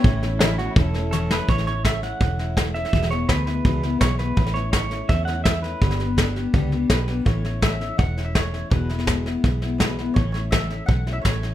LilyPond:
<<
  \new Staff \with { instrumentName = "Mandolin" } { \time 4/4 \key a \mixolydian \tempo 4 = 166 <e' cis''>2.~ <e' cis''>8 r8 | r1 | r1 | r1 |
r2. b'4 | cis''4 e''4 fis''8. e''16 cis''4 | b'2. b'4 | cis''8 cis''8 e''4 fis''8. e''16 cis''4 | }
  \new Staff \with { instrumentName = "Pedal steel guitar" } { \time 4/4 \key a \mixolydian << { r2. cis''8 b'8 | cis''8 cis''8 e''8 fis''2 e''8~ | e''8 cis''8 b'8 b'4. cis''8 b'8~ | b'8 cis''8 cis''4 e''8 fis''8 e''8 b'8~ |
b'2. r4 | r1 | r1 | r1 | } \\ { r4 e'8 fis'8 a'4 a'8. r16 | r1 | r1 | r1 |
r1 | r1 | r1 | r1 | } >> }
  \new Staff \with { instrumentName = "String section" } { \time 4/4 \key a \mixolydian <a cis' e'>1 | r1 | r1 | r1 |
r1 | r1 | r1 | r1 | }
  \new Staff \with { instrumentName = "Steel-string acoustic guitar" } { \time 4/4 \key a \mixolydian <a, e a cis' e'>8 <a cis' e'>8 <a, e a cis' e'>8 <a cis' e'>8 <e a cis' e'>8 <a cis' e'>8 <a, e a cis' e'>8 <a cis' e'>8 | <a, e a cis' e'>8 <a cis' e'>8 <e a cis'>8 <a cis' e'>8 <a, e a cis' e'>8 <a cis' e'>8 <e a cis' e'>8 <a cis' e'>8 | <e, b, e gis b e'>8 <e gis b e'>8 <e gis b e'>8 <e gis b e'>8 <e, b, e gis b e'>8 <e gis b e'>8 <e gis b e'>8 <e gis b e'>8 | <a, e a cis' e'>8 <a cis' e'>8 <e a cis' e'>8 <a cis' e'>8 <a, e a cis' e'>8 <a cis' e'>8 <e a cis' e'>8 <a cis' e'>8 |
<g, d g b d' g'>8 <g b d' g'>8 <g b d' g'>8 <g b d' g'>8 <g, d g b d' g'>8 <g b d' g'>8 <g b d' g'>8 <g b d' g'>8 | <a, e a cis' e'>8 <a cis' e'>8 <a, e a cis' e'>8 <a cis' e'>8 <e a cis' e'>8 <a cis' e'>8 <a, e a cis' e'>8 <a cis' e'>8 | <e, b, e gis b e'>8 <e gis b e'>8 <e, b, e gis b e'>8 <e gis b e'>8 <e gis b e'>8 <e gis b e'>8 <e, b, e gis b e'>8 <e gis b e'>8 | <a, e a cis' e'>8 <a cis' e'>8 <a, e a cis' e'>8 <a cis' e'>8 <e a cis' e'>8 <a cis' e'>8 <a, e a cis' e'>8 <a cis' e'>8 | }
  \new Staff \with { instrumentName = "Fingered electric bass" } { \clef bass \time 4/4 \key a \mixolydian a,,2 e,,2 | a,,2 e,,2 | e,,4 d,4 cis,4 b,,4 | a,,2 e,2 |
g,,2 cis,4 b,,4 | a,,2 e,,2 | e,,2 b,,2 | a,,2 b,,4 a,,4 | }
  \new DrumStaff \with { instrumentName = "Drums" } \drummode { \time 4/4 <bd sn>8 sn8 <hhp sn>8 sn8 <bd sn>8 sn8 <hhp sn>8 sn8 | <bd sn>16 sn16 sn8 <hhp bd sn>8 sn8 <bd sn>8 sn8 <hhp bd sn>8 sn16 sn16 | <bd sn>16 sn16 sn8 <hhp bd sn>8 sn8 <bd sn>8 sn8 <hhp bd sn>8 sn8 | <bd sn>16 sn16 sn8 <hhp bd sn>8 sn8 <bd sn>8 sn8 <hhp bd sn>8 sn8 |
<bd sn>16 sn16 sn8 <hhp bd sn>8 sn8 <bd sn>8 sn8 <hhp bd sn>8 sn8 | <bd sn>8 sn8 <hhp bd sn>8 sn8 <bd sn>8 sn8 <hhp bd sn>8 sn8 | <bd sn>8 sn16 sn16 <hhp bd sn>8 sn8 <bd sn>8 sn8 <hhp bd sn>8 sn8 | <bd sn>8 sn8 <hhp bd sn>8 sn8 <bd sn>8 sn8 <hhp bd sn>8 sn8 | }
>>